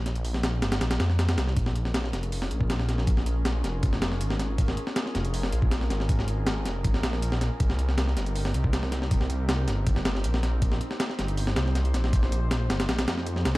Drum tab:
HH |xxo-x-xxxxx-xxx-|x-x-x-xxo-x-x-x-|x-x-x-x-x-x-x-x-|x-x-x-xxo-x-x-x-|
SD |o--oo-oooooooooo|-o-oooo--o--oooo|-o--o-o--ooo-oo-|-o-oooo--o--oooo|
BD |----------------|o----------o----|o-------o-------|o----------o----|

HH |x-x-x-x-x-x-x-x-|x-x-x-xxo-x-x-x-|x-x-x-x-x-x-x-x-|x-x-x-xxo-x-xxx-|
SD |-o--o-o--ooo-oo-|-o-oooo--o--oooo|-o--o-o--ooo-oo-|-o-oooo--oooo-oo|
BD |o-------o-------|o----------o----|o-------o-------|o---------------|

HH |x-x-x-xxxxx-x-x-|
SD |-o--o-oooooo-oo-|
BD |o---------------|